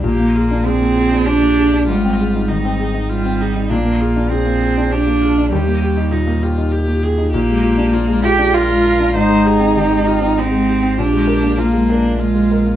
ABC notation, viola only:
X:1
M:3/4
L:1/8
Q:1/4=99
K:Bbmix
V:1 name="Viola"
G F A2 G2 | F2 E2 F E | D F A2 G F | G2 E F G A |
G2 F A B2 | c A G F E2 | G2 F D F2 |]